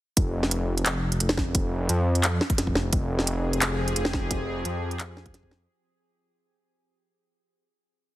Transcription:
0.17 detuned saw bass F1, kick, closed hi-hat
0.43 snare
0.51 closed hi-hat
0.78 closed hi-hat
0.86 detuned saw bass F1, clap, closed hi-hat
1.12 closed hi-hat
1.20 detuned saw bass F1, closed hi-hat
1.29 snare
1.38 kick, snare
1.55 kick, closed hi-hat
1.89 detuned saw bass F2, closed hi-hat
2.15 closed hi-hat
2.24 clap, closed hi-hat
2.41 snare
2.50 kick, closed hi-hat
2.58 detuned saw bass F1, snare, closed hi-hat
2.67 kick
2.75 snare
2.93 detuned saw bass F1, synth drone F3 C4 G4 G#4, kick, closed hi-hat
3.19 snare
3.27 closed hi-hat
3.53 closed hi-hat
3.62 detuned saw bass F1, clap, closed hi-hat
3.88 closed hi-hat
3.96 detuned saw bass F1, closed hi-hat
4.05 snare
4.13 kick, snare
4.31 kick, closed hi-hat
4.65 detuned saw bass F2, closed hi-hat
4.91 closed hi-hat
5.00 clap, closed hi-hat
5.17 snare
5.26 kick, closed hi-hat
5.34 snare, closed hi-hat
5.43 kick
5.51 snare

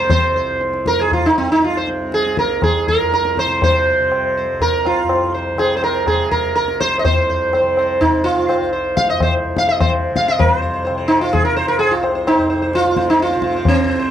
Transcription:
Already playing: tanpura C2 F2 C3
0.10 sitar C5, tabla tin, tabla ge
0.29 tanpura C2
0.36 sitar C5
0.61 tabla te
0.73 tabla te
0.83 tanpura F2, sitar A#4, tabla ke
0.99 sitar G#4, tabla te
1.12 sitar F4, tabla tin, tabla ge
1.26 sitar D#4
1.37 tanpura C3, sitar C4
1.52 sitar D#4
1.62 sitar F4, tabla te
1.77 sitar C5
1.87 tanpura C3, tabla te
2.12 sitar G#4, tabla te
2.25 tabla te
2.37 sitar A#4, tabla ke
2.43 tanpura C2
2.50 tabla te
2.62 sitar G#4, tabla na, tabla ge
2.88 sitar A#4, tabla ge
2.96 tanpura F2
3.12 sitar A#4, tabla te
3.25 tabla te
3.37 sitar C5, tabla ke
3.47 tanpura C3, tabla te
3.62 sitar C5, tabla tin, tabla ge
4.00 tanpura C3
4.12 tabla na
4.37 sitar C5
4.52 tanpura C2
4.60 sitar A#4, tabla tin, tabla ge
4.85 sitar F4, tabla na
5.03 tanpura F2
5.09 tabla na
5.34 sitar C5
5.55 tanpura C3, tabla na
5.59 sitar G#4
5.77 sitar C5
5.82 sitar A#4, tabla na
6.06 tanpura C3, sitar G#4, tabla na, tabla ge
6.31 sitar A#4, tabla ge
6.55 tanpura C2, sitar A#4, tabla te
6.68 tabla te
6.80 sitar C5, tabla ke
6.93 tabla te
6.99 sitar D#5
7.05 tanpura F2, sitar C5, tabla tin, tabla ge
7.29 sitar C5
7.53 sitar C5, tabla na
7.61 tanpura C3
7.77 sitar C5, tabla na
8.01 sitar D#4, tabla tin, tabla ge
8.11 tanpura C3
8.24 sitar F4, tabla na
8.48 sitar C5, tabla na
8.60 tanpura C2
8.73 sitar C5
8.97 sitar F5, tabla ke
9.09 tanpura F2, sitar D#5, tabla te
9.20 sitar C5, tabla na, tabla ge
9.57 sitar F5, tabla ke
9.61 tanpura C3
9.68 sitar D#5, tabla te
9.80 sitar C5, tabla na, tabla ge
10.11 tanpura C3
10.16 sitar F5, tabla ke
10.28 sitar D#5, tabla te
10.38 tanpura F2, sitar A#4, tabla tin, tabla ge
10.62 sitar C5
10.74 sitar C5
10.85 sitar C5, tabla na
10.89 tanpura C3
10.98 sitar C5
11.08 sitar D#4, tabla na
11.21 sitar F4
11.33 sitar G#4, tabla tin, tabla ge
11.37 tanpura C3
11.45 sitar A#4
11.56 sitar C5
11.68 sitar A#4
11.79 sitar G#4, tabla na
11.89 tanpura C2, sitar F4
12.02 sitar C5, tabla na
12.15 sitar C5
12.27 sitar D#4, tabla na
12.37 tanpura F2, sitar C5
12.50 sitar C5, tabla na
12.62 sitar C5
12.73 sitar F4, tabla te
12.85 tanpura C3, tabla te
12.97 sitar C5, tabla ke
13.08 sitar D#4, tabla te
13.20 sitar F4, tabla te
13.31 sitar C5, tabla te
13.35 tanpura C3
13.42 sitar C5, tabla ke
13.54 sitar C5, tabla te
13.65 sitar C4, tabla tin, tabla ge
13.78 sitar C5
13.84 tanpura C2
13.89 sitar C5
14.00 sitar C5

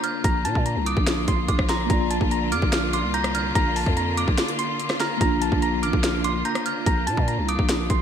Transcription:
Already playing: string section D3 A#3 F4, tine electric piano A#3 D4 F4, synth keys A#5
0.04 synth bell F6, closed hi-hat
0.24 808-style bass A#1, synth keys A#5, kick, closed hi-hat
0.45 808-style bass A#2, synth keys A5, closed hi-hat
0.55 808-style bass A#2, kick
0.66 synth keys A#5, closed hi-hat
0.76 808-style bass C2
0.86 synth keys D6, synth bell D#6, closed hi-hat
0.97 808-style bass A#1, kick
1.07 snare, closed hi-hat
1.28 808-style bass A#1, synth keys C6, kick, closed hi-hat
1.48 808-style bass A#1, synth bell D6, kick, closed hi-hat
1.59 kick, cross-stick
1.69 synth keys A#5, synth bell C6, snare, closed hi-hat
1.86 808-style bass A#1, tine electric piano A#3 F4, kick, closed hi-hat
1.90 tine electric piano D5, synth keys A#5
2.10 synth keys A5, closed hi-hat
2.21 808-style bass A#1, kick
2.31 synth keys A#5, closed hi-hat
2.52 808-style bass F2, synth keys D6, synth bell F6, closed hi-hat
2.62 808-style bass A#1, kick
2.73 snare, closed hi-hat
2.93 synth keys C6, synth bell D6, closed hi-hat
3.04 808-style bass C2
3.14 synth keys A#5, synth bell G6, closed hi-hat
3.24 cross-stick, closed hi-hat
3.35 synth bell F6, closed hi-hat
3.55 808-style bass A#1, synth keys A#5, kick, closed hi-hat
3.76 synth keys A5, open hi-hat
3.86 808-style bass F2, kick
3.97 synth keys A#5, closed hi-hat
4.17 synth keys D6, synth bell D6, closed hi-hat
4.28 808-style bass A#1, kick
4.38 snare, closed hi-hat
4.48 closed hi-hat
4.59 synth keys C6, closed hi-hat
4.79 closed hi-hat
4.90 cross-stick, snare
5.00 synth keys A#5, synth bell F6, snare, closed hi-hat
5.17 808-style bass A#1, tine electric piano A#3 F4, synth keys A#5, kick, closed hi-hat
5.25 tine electric piano D4
5.42 synth keys A5, closed hi-hat
5.52 808-style bass A#1, kick
5.62 synth keys A#5, closed hi-hat
5.83 808-style bass A1, synth keys D6, synth bell F6, closed hi-hat
5.93 808-style bass A#1, kick
6.04 snare, closed hi-hat
6.24 synth keys C6, synth bell D6, closed hi-hat
6.45 synth keys A#5, synth bell G6, closed hi-hat
6.55 cross-stick, closed hi-hat
6.66 synth bell F6, closed hi-hat
6.86 808-style bass A#1, synth keys A#5, kick, closed hi-hat
7.07 808-style bass A#2, synth keys A5, closed hi-hat
7.17 808-style bass A#2, kick
7.28 synth keys A#5, closed hi-hat
7.38 808-style bass C2
7.49 synth keys D6, synth bell D#6, closed hi-hat
7.59 808-style bass A#1, kick
7.69 snare, closed hi-hat
7.90 808-style bass A#1, synth keys C6, kick, closed hi-hat

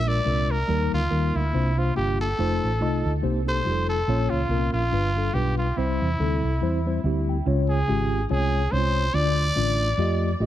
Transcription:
Already playing: fingered electric bass A#1, tine electric piano A#2
0.06 tine electric piano G#3 D4 F4 A#4, trumpet D5
0.25 fingered electric bass C2, tine electric piano G#3 D4 F4 A#4
0.51 trumpet A#4
0.68 fingered electric bass D#2, tine electric piano D#3 G3 A#3 D#4 A#4
0.93 fingered electric bass D2, trumpet F4
1.10 fingered electric bass D#2, tine electric piano G3 A#3 D#4 A#4
1.35 fingered electric bass D2, trumpet E4
1.53 fingered electric bass C2, tine electric piano C3 A#3 D4 F4 C5
1.77 tine electric piano A#3 D4 F4 C5, trumpet F4
1.95 fingered electric bass G1, tine electric piano A#3 D4 F4 G4, trumpet G4
2.21 trumpet A4
2.38 fingered electric bass F1, tine electric piano A3 D#4 F4 C5
2.63 fingered electric bass A1
2.80 fingered electric bass C2, tine electric piano A3 D#4 F4 D#5
3.05 fingered electric bass D2
3.22 fingered electric bass C2, tine electric piano C3 A#3 D#4 G4 C5
3.46 tine electric piano A#3 D#4 G4 A4, trumpet C5
3.64 fingered electric bass F1, tine electric piano G3 D#4 F4 G4
3.71 tine electric piano A4
3.89 trumpet A4
4.07 fingered electric bass A#1, tine electric piano A#2 A#3 C#4 F4 C#5
4.30 fingered electric bass C#2, trumpet F4
4.49 fingered electric bass C2, tine electric piano A#3 C4 F4 A#4
4.55 tine electric piano C#4
4.73 fingered electric bass A#1, trumpet F4
4.92 fingered electric bass G1, tine electric piano G2 G3 D4 F4 B4
5.16 tine electric piano G3 D4 F4 A4
5.33 fingered electric bass B1, tine electric piano G3 D4 F4 B4, trumpet G4
5.58 trumpet F4
5.77 fingered electric bass C2, tine electric piano C3 G3 C4 E4 C5, trumpet E4
6.02 fingered electric bass E2
6.18 fingered electric bass D2, tine electric piano G3 C4 D#4 A4
6.25 tine electric piano E4
6.43 fingered electric bass C2
6.61 fingered electric bass E2, tine electric piano G3 C4 E4 C5
6.86 tine electric piano G3 C4 E4 C5
7.04 fingered electric bass D2, tine electric piano G3 C4 E4 G4 E5
7.29 tine electric piano G5
7.45 fingered electric bass C#2, tine electric piano C#3 G#3 C#4 F4 C#5
7.69 trumpet G#4
7.88 fingered electric bass G#1, tine electric piano G#3 C#4 F4 G4
8.30 fingered electric bass C2, tine electric piano G#3 C#4 F4 C#5, trumpet G#4
8.71 fingered electric bass C2, tine electric piano G#3 C#4 D#4 C#5, trumpet C5
8.78 tine electric piano F4
9.13 fingered electric bass D2, tine electric piano D3 A3 D4 F4 D5, trumpet D5
9.56 fingered electric bass A1, tine electric piano A3 D4 F4 D5
9.97 fingered electric bass F2, tine electric piano A3 F4 G4 D#5
10.40 fingered electric bass A1, tine electric piano A3 F4 G4 D#5

